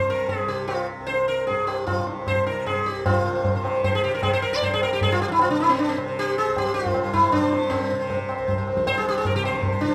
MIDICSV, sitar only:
0, 0, Header, 1, 2, 480
1, 0, Start_track
1, 0, Tempo, 394218
1, 827, Time_signature, 3, 2, 24, 8
1, 6099, Tempo, 384862
1, 12256, End_track
2, 0, Start_track
2, 0, Title_t, "Sitar"
2, 0, Program_c, 0, 104
2, 119, Note_on_c, 0, 70, 86
2, 349, Note_off_c, 0, 70, 0
2, 353, Note_on_c, 0, 68, 82
2, 587, Note_on_c, 0, 67, 78
2, 598, Note_off_c, 0, 68, 0
2, 817, Note_off_c, 0, 67, 0
2, 822, Note_on_c, 0, 65, 67
2, 1049, Note_off_c, 0, 65, 0
2, 1297, Note_on_c, 0, 72, 97
2, 1552, Note_off_c, 0, 72, 0
2, 1557, Note_on_c, 0, 70, 85
2, 1783, Note_off_c, 0, 70, 0
2, 1787, Note_on_c, 0, 68, 78
2, 2034, Note_on_c, 0, 67, 76
2, 2039, Note_off_c, 0, 68, 0
2, 2267, Note_off_c, 0, 67, 0
2, 2271, Note_on_c, 0, 65, 68
2, 2497, Note_off_c, 0, 65, 0
2, 2513, Note_on_c, 0, 72, 35
2, 2738, Note_off_c, 0, 72, 0
2, 2771, Note_on_c, 0, 72, 94
2, 2996, Note_off_c, 0, 72, 0
2, 3001, Note_on_c, 0, 70, 80
2, 3238, Note_off_c, 0, 70, 0
2, 3243, Note_on_c, 0, 68, 82
2, 3481, Note_on_c, 0, 67, 76
2, 3487, Note_off_c, 0, 68, 0
2, 3718, Note_off_c, 0, 67, 0
2, 3723, Note_on_c, 0, 65, 81
2, 3727, Note_on_c, 0, 72, 39
2, 3822, Note_off_c, 0, 72, 0
2, 3837, Note_on_c, 0, 72, 38
2, 3940, Note_off_c, 0, 72, 0
2, 3955, Note_on_c, 0, 72, 40
2, 4067, Note_off_c, 0, 72, 0
2, 4082, Note_on_c, 0, 72, 41
2, 4176, Note_off_c, 0, 72, 0
2, 4191, Note_on_c, 0, 72, 38
2, 4312, Note_off_c, 0, 72, 0
2, 4327, Note_on_c, 0, 72, 42
2, 4388, Note_off_c, 0, 65, 0
2, 4424, Note_off_c, 0, 72, 0
2, 4439, Note_on_c, 0, 72, 37
2, 4550, Note_off_c, 0, 72, 0
2, 4565, Note_on_c, 0, 72, 42
2, 4665, Note_off_c, 0, 72, 0
2, 4679, Note_on_c, 0, 72, 91
2, 4798, Note_off_c, 0, 72, 0
2, 4809, Note_on_c, 0, 68, 95
2, 4909, Note_off_c, 0, 68, 0
2, 4914, Note_on_c, 0, 67, 90
2, 5034, Note_off_c, 0, 67, 0
2, 5045, Note_on_c, 0, 70, 83
2, 5144, Note_off_c, 0, 70, 0
2, 5149, Note_on_c, 0, 68, 102
2, 5259, Note_off_c, 0, 68, 0
2, 5277, Note_on_c, 0, 72, 99
2, 5380, Note_off_c, 0, 72, 0
2, 5384, Note_on_c, 0, 70, 102
2, 5496, Note_off_c, 0, 70, 0
2, 5515, Note_on_c, 0, 74, 93
2, 5632, Note_off_c, 0, 74, 0
2, 5641, Note_on_c, 0, 72, 101
2, 5754, Note_off_c, 0, 72, 0
2, 5764, Note_on_c, 0, 68, 102
2, 5873, Note_off_c, 0, 68, 0
2, 5878, Note_on_c, 0, 70, 96
2, 5991, Note_off_c, 0, 70, 0
2, 6000, Note_on_c, 0, 67, 98
2, 6112, Note_off_c, 0, 67, 0
2, 6119, Note_on_c, 0, 68, 95
2, 6233, Note_off_c, 0, 68, 0
2, 6240, Note_on_c, 0, 65, 95
2, 6352, Note_off_c, 0, 65, 0
2, 6357, Note_on_c, 0, 67, 98
2, 6433, Note_off_c, 0, 67, 0
2, 6438, Note_on_c, 0, 65, 67
2, 6465, Note_off_c, 0, 65, 0
2, 6484, Note_on_c, 0, 64, 82
2, 6598, Note_off_c, 0, 64, 0
2, 6603, Note_on_c, 0, 65, 94
2, 6712, Note_off_c, 0, 65, 0
2, 6717, Note_on_c, 0, 62, 92
2, 6832, Note_off_c, 0, 62, 0
2, 6837, Note_on_c, 0, 64, 91
2, 6950, Note_on_c, 0, 60, 80
2, 6956, Note_off_c, 0, 64, 0
2, 7073, Note_off_c, 0, 60, 0
2, 7073, Note_on_c, 0, 62, 84
2, 7195, Note_off_c, 0, 62, 0
2, 7195, Note_on_c, 0, 60, 74
2, 7305, Note_off_c, 0, 60, 0
2, 7308, Note_on_c, 0, 72, 43
2, 7414, Note_off_c, 0, 72, 0
2, 7429, Note_on_c, 0, 72, 45
2, 7572, Note_on_c, 0, 67, 110
2, 7654, Note_off_c, 0, 72, 0
2, 7672, Note_on_c, 0, 72, 43
2, 7805, Note_off_c, 0, 67, 0
2, 7810, Note_on_c, 0, 68, 102
2, 7897, Note_off_c, 0, 72, 0
2, 7914, Note_on_c, 0, 72, 40
2, 8050, Note_off_c, 0, 68, 0
2, 8059, Note_on_c, 0, 67, 104
2, 8138, Note_off_c, 0, 72, 0
2, 8154, Note_on_c, 0, 72, 41
2, 8253, Note_off_c, 0, 67, 0
2, 8257, Note_on_c, 0, 65, 105
2, 8361, Note_off_c, 0, 72, 0
2, 8376, Note_on_c, 0, 72, 42
2, 8488, Note_off_c, 0, 72, 0
2, 8503, Note_on_c, 0, 72, 43
2, 8609, Note_off_c, 0, 72, 0
2, 8624, Note_on_c, 0, 72, 44
2, 8743, Note_off_c, 0, 65, 0
2, 8748, Note_on_c, 0, 64, 88
2, 8853, Note_off_c, 0, 72, 0
2, 8867, Note_on_c, 0, 72, 42
2, 8977, Note_off_c, 0, 64, 0
2, 8982, Note_on_c, 0, 62, 91
2, 9085, Note_off_c, 0, 72, 0
2, 9099, Note_on_c, 0, 72, 45
2, 9204, Note_off_c, 0, 72, 0
2, 9219, Note_on_c, 0, 72, 39
2, 9330, Note_off_c, 0, 72, 0
2, 9345, Note_on_c, 0, 72, 39
2, 9451, Note_on_c, 0, 60, 80
2, 9484, Note_off_c, 0, 62, 0
2, 9573, Note_off_c, 0, 72, 0
2, 9824, Note_on_c, 0, 72, 40
2, 9933, Note_off_c, 0, 72, 0
2, 9948, Note_on_c, 0, 72, 41
2, 10132, Note_off_c, 0, 60, 0
2, 10167, Note_off_c, 0, 72, 0
2, 10182, Note_on_c, 0, 72, 39
2, 10284, Note_off_c, 0, 72, 0
2, 10299, Note_on_c, 0, 72, 42
2, 10409, Note_off_c, 0, 72, 0
2, 10424, Note_on_c, 0, 72, 38
2, 10537, Note_off_c, 0, 72, 0
2, 10552, Note_on_c, 0, 72, 46
2, 10775, Note_off_c, 0, 72, 0
2, 10791, Note_on_c, 0, 72, 42
2, 10900, Note_off_c, 0, 72, 0
2, 10915, Note_on_c, 0, 72, 117
2, 11036, Note_off_c, 0, 72, 0
2, 11047, Note_on_c, 0, 68, 93
2, 11161, Note_off_c, 0, 68, 0
2, 11182, Note_on_c, 0, 67, 97
2, 11288, Note_off_c, 0, 67, 0
2, 11295, Note_on_c, 0, 68, 94
2, 11404, Note_off_c, 0, 68, 0
2, 11404, Note_on_c, 0, 70, 91
2, 11517, Note_off_c, 0, 70, 0
2, 11522, Note_on_c, 0, 67, 92
2, 11634, Note_off_c, 0, 67, 0
2, 11639, Note_on_c, 0, 72, 91
2, 11727, Note_off_c, 0, 72, 0
2, 11742, Note_on_c, 0, 72, 47
2, 11840, Note_off_c, 0, 72, 0
2, 11855, Note_on_c, 0, 72, 42
2, 11962, Note_off_c, 0, 72, 0
2, 11977, Note_on_c, 0, 72, 46
2, 12084, Note_on_c, 0, 62, 89
2, 12193, Note_off_c, 0, 72, 0
2, 12208, Note_on_c, 0, 72, 39
2, 12256, Note_off_c, 0, 62, 0
2, 12256, Note_off_c, 0, 72, 0
2, 12256, End_track
0, 0, End_of_file